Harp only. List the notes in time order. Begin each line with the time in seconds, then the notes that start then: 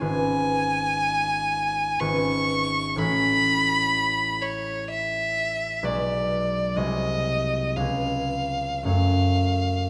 0.00 G#1 C#4 F4 B4
2.00 G#1 C#4 F4 B4
2.96 A1 C#4 A4
3.01 F#4
5.83 B1 G#3 F#4 G#4
6.75 C2 G#3 F#4 G#4
7.76 C#2 B3 C#4
7.80 G#4
8.83 F#2 A3 C#4
8.88 A4